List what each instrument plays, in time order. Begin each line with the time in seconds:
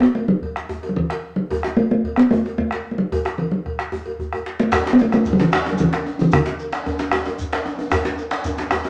0.00 talking drum B3, bombo rim, djembe slap, djembe tone
0.15 talking drum A3, cowbell
0.28 talking drum F#3
0.42 bombo low, cowbell, djembe slap
0.56 bombo rim, djembe slap
0.69 djembe slap, djembe bass
0.83 cowbell, djembe tone
0.89 talking drum F#3
0.96 talking drum E3, bombo low
1.10 bombo rim, cowbell, djembe slap
1.36 talking drum F#3
1.50 bombo low, cowbell, djembe bass
1.63 bombo rim, djembe slap, djembe tone
1.77 talking drum A3, cowbell
1.91 talking drum A3
2.04 bombo low, cowbell, djembe slap
2.16 talking drum B3, bombo rim, djembe slap
2.31 talking drum A3, djembe slap, djembe bass
2.46 cowbell, djembe tone
2.58 talking drum A3, bombo low
2.71 bombo rim, cowbell, djembe slap
2.91 talking drum A3
2.98 talking drum F#3
3.12 bombo low, cowbell, djembe bass
3.25 bombo rim, djembe slap, djembe tone
3.38 talking drum E3, cowbell
3.52 talking drum F#3, djembe slap
3.66 bombo rim, bombo low, cowbell, djembe slap
3.79 bombo rim, djembe slap
3.92 djembe bass
4.06 cowbell, djembe bass
4.19 bombo low, djembe bass
4.33 bombo rim, cowbell, djembe bass
4.46 bombo rim, djembe slap
4.59 talking drum A3, djembe slap
4.72 bombo rim, bombo low, cowbell, djembe slap, djembe bass, shekere
4.85 djembe slap, djembe tone, shekere
4.93 talking drum B3
4.99 talking drum A3, cowbell, djembe tone, shekere
5.12 talking drum A3, bombo rim, djembe tone, shekere
5.25 bombo rim, bombo low, cowbell, djembe slap, djembe tone, shekere
5.33 talking drum F#3
5.39 talking drum E3, bombo rim, djembe slap, djembe bass, shekere
5.51 bombo rim, djembe slap, djembe bass, shekere
5.65 cowbell, djembe tone, shekere
5.73 talking drum F#3
5.78 talking drum E3, bombo low, djembe tone, shekere
5.93 bombo rim, cowbell, djembe slap, djembe tone
6.06 djembe tone
6.19 talking drum E3, djembe bass
6.31 talking drum D3, bombo rim, bombo low, cowbell, djembe bass, shekere
6.46 djembe slap, djembe tone, shekere
6.59 cowbell, shekere
6.72 bombo rim, djembe slap, shekere
6.86 bombo rim, bombo low, cowbell, djembe slap, djembe tone
6.99 bombo rim, djembe slap, djembe tone, shekere
7.12 bombo rim, djembe slap, djembe bass, shekere
7.25 cowbell, djembe tone, shekere
7.38 bombo low, shekere
7.53 bombo rim, cowbell, djembe slap
7.66 djembe tone
7.79 djembe tone
7.91 bombo rim, bombo low, cowbell, djembe slap, djembe bass, shekere
8.05 djembe slap, djembe tone, shekere
8.18 cowbell, shekere
8.31 bombo rim, djembe slap, shekere
8.44 bombo rim, bombo low, cowbell, djembe slap, djembe tone, shekere
8.57 bombo rim, djembe slap, djembe tone, shekere
8.71 bombo rim, djembe slap, djembe bass, shekere
8.84 cowbell, djembe tone, shekere